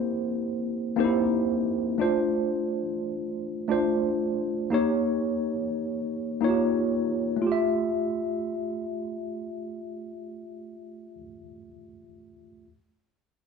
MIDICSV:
0, 0, Header, 1, 2, 480
1, 0, Start_track
1, 0, Key_signature, -1, "major"
1, 0, Tempo, 681044
1, 1407, Time_signature, 4, 2, 24, 8
1, 9493, End_track
2, 0, Start_track
2, 0, Title_t, "Tine electric piano"
2, 0, Program_c, 0, 4
2, 0, Control_c, 0, 64, 127
2, 0, Note_on_c, 0, 58, 92
2, 0, Note_on_c, 0, 60, 83
2, 0, Note_on_c, 0, 64, 80
2, 0, Note_on_c, 0, 67, 78
2, 0, Note_on_c, 0, 72, 105
2, 72, Note_off_c, 0, 67, 0
2, 76, Note_off_c, 0, 72, 0
2, 679, Note_off_c, 0, 58, 0
2, 679, Note_on_c, 0, 58, 85
2, 682, Note_off_c, 0, 60, 0
2, 682, Note_on_c, 0, 60, 78
2, 691, Note_on_c, 0, 63, 66
2, 698, Note_on_c, 0, 67, 75
2, 706, Note_on_c, 0, 72, 94
2, 735, Note_off_c, 0, 63, 0
2, 738, Note_off_c, 0, 64, 0
2, 738, Note_on_c, 0, 64, 79
2, 1117, Note_off_c, 0, 58, 0
2, 1118, Note_off_c, 0, 60, 0
2, 1126, Note_off_c, 0, 67, 0
2, 1130, Note_off_c, 0, 72, 0
2, 1146, Note_off_c, 0, 64, 0
2, 1395, Note_on_c, 0, 57, 78
2, 1405, Note_on_c, 0, 62, 74
2, 1413, Note_on_c, 0, 65, 74
2, 1416, Control_c, 0, 64, 0
2, 1421, Note_on_c, 0, 72, 92
2, 1538, Control_c, 0, 64, 127
2, 1979, Note_off_c, 0, 57, 0
2, 1983, Note_off_c, 0, 62, 0
2, 1987, Note_off_c, 0, 65, 0
2, 1991, Note_off_c, 0, 72, 0
2, 2592, Note_on_c, 0, 57, 76
2, 2600, Note_on_c, 0, 62, 72
2, 2609, Note_on_c, 0, 65, 68
2, 2619, Note_on_c, 0, 72, 88
2, 3032, Note_off_c, 0, 57, 0
2, 3036, Note_off_c, 0, 62, 0
2, 3041, Note_off_c, 0, 65, 0
2, 3046, Note_off_c, 0, 72, 0
2, 3315, Note_on_c, 0, 58, 80
2, 3324, Note_on_c, 0, 63, 73
2, 3333, Note_on_c, 0, 67, 75
2, 3334, Control_c, 0, 64, 0
2, 3342, Note_on_c, 0, 73, 91
2, 3453, Control_c, 0, 64, 127
2, 3898, Note_off_c, 0, 58, 0
2, 3902, Note_off_c, 0, 63, 0
2, 3907, Note_off_c, 0, 67, 0
2, 3912, Note_off_c, 0, 73, 0
2, 4514, Note_on_c, 0, 58, 75
2, 4522, Note_on_c, 0, 63, 68
2, 4532, Note_on_c, 0, 65, 55
2, 4541, Note_on_c, 0, 73, 83
2, 4574, Note_off_c, 0, 65, 0
2, 4579, Note_on_c, 0, 67, 68
2, 4953, Note_off_c, 0, 58, 0
2, 4957, Note_off_c, 0, 63, 0
2, 4967, Note_off_c, 0, 73, 0
2, 4986, Note_off_c, 0, 67, 0
2, 5190, Note_on_c, 0, 57, 72
2, 5227, Note_on_c, 0, 65, 72
2, 5254, Control_c, 0, 64, 0
2, 5261, Note_on_c, 0, 67, 70
2, 5298, Note_on_c, 0, 76, 89
2, 5375, Control_c, 0, 64, 127
2, 7855, Note_off_c, 0, 57, 0
2, 7891, Note_off_c, 0, 65, 0
2, 7926, Note_off_c, 0, 67, 0
2, 7963, Note_off_c, 0, 76, 0
2, 8937, Control_c, 0, 64, 0
2, 9493, End_track
0, 0, End_of_file